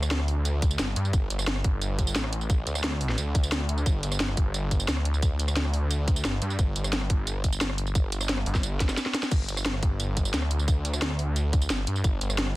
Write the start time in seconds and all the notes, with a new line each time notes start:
Already playing: D2
0.03 cross-stick, tambourine
0.11 snare, closed hi-hat
0.20 cross-stick
0.28 open hi-hat
0.45 closed hi-hat, tambourine
0.62 kick, closed hi-hat, tambourine
0.71 tambourine
0.79 G1, snare, closed hi-hat, tambourine
0.96 G2, closed hi-hat
1.05 tambourine
1.13 G1, kick, closed hi-hat, tambourine
1.30 G1, closed hi-hat, tambourine
1.39 cross-stick, tambourine
1.47 snare, closed hi-hat
1.56 cross-stick
1.64 G1, kick, closed hi-hat
1.82 closed hi-hat, tambourine
1.99 kick, closed hi-hat, tambourine
2.07 tambourine
2.16 A1, snare, closed hi-hat, tambourine
2.24 cross-stick
2.33 closed hi-hat
2.41 tambourine
2.50 kick, closed hi-hat, tambourine
2.67 D2, closed hi-hat, tambourine
2.75 cross-stick, tambourine
2.84 snare, closed hi-hat
2.92 cross-stick
3.01 open hi-hat
3.09 snare
3.18 D2, closed hi-hat, tambourine
3.35 kick, closed hi-hat, tambourine
3.43 tambourine
3.52 snare, closed hi-hat, tambourine
3.69 closed hi-hat
3.78 tambourine
3.86 G1, kick, closed hi-hat, tambourine
4.03 G1, closed hi-hat, tambourine
4.12 cross-stick, tambourine
4.20 snare, closed hi-hat
4.29 cross-stick
4.37 G1, kick, closed hi-hat
4.54 closed hi-hat, tambourine
4.71 kick, closed hi-hat, tambourine
4.80 tambourine
4.88 D2, snare, closed hi-hat, tambourine
4.97 cross-stick
5.05 closed hi-hat
5.14 tambourine
5.22 kick, closed hi-hat, tambourine
5.39 closed hi-hat, tambourine
5.48 cross-stick, tambourine
5.57 snare, closed hi-hat
5.65 cross-stick
5.74 open hi-hat
5.91 closed hi-hat, tambourine
6.08 kick, closed hi-hat, tambourine
6.16 tambourine
6.25 G1, snare, closed hi-hat, tambourine
6.42 G2, closed hi-hat
6.50 tambourine
6.59 G1, kick, closed hi-hat, tambourine
6.76 G1, closed hi-hat, tambourine
6.84 cross-stick, tambourine
6.93 snare, closed hi-hat
7.01 cross-stick
7.10 G1, kick, closed hi-hat
7.27 closed hi-hat, tambourine
7.44 kick, closed hi-hat, tambourine
7.53 tambourine
7.61 G1, snare, closed hi-hat, tambourine
7.70 cross-stick
7.78 closed hi-hat
7.87 tambourine
7.95 kick, closed hi-hat, tambourine
8.12 closed hi-hat, tambourine
8.21 cross-stick, tambourine
8.29 snare, closed hi-hat
8.38 cross-stick
8.46 G1, open hi-hat
8.55 kick, snare, tambourine
8.63 closed hi-hat, tambourine
8.80 kick, snare, closed hi-hat, tambourine
8.89 snare, tambourine
8.97 snare, closed hi-hat, tambourine
9.06 snare
9.14 snare, closed hi-hat
9.23 snare, tambourine
9.31 G1, kick, closed hi-hat, crash, tambourine
9.49 G1, closed hi-hat, tambourine
9.57 cross-stick, tambourine
9.66 snare, closed hi-hat
9.74 cross-stick
9.83 G1, kick, closed hi-hat
10.00 closed hi-hat, tambourine
10.17 kick, closed hi-hat, tambourine
10.25 tambourine
10.34 D2, snare, closed hi-hat, tambourine
10.42 cross-stick
10.51 closed hi-hat
10.59 tambourine
10.68 kick, closed hi-hat, tambourine
10.85 closed hi-hat, tambourine
10.93 cross-stick, tambourine
11.02 snare, closed hi-hat
11.10 cross-stick
11.19 open hi-hat
11.36 closed hi-hat, tambourine
11.53 kick, closed hi-hat, tambourine
11.62 tambourine
11.70 G1, snare, closed hi-hat, tambourine
11.87 G2, closed hi-hat
11.96 tambourine
12.04 G1, kick, closed hi-hat, tambourine
12.21 G1, closed hi-hat, tambourine
12.30 cross-stick, tambourine
12.38 snare, closed hi-hat
12.47 cross-stick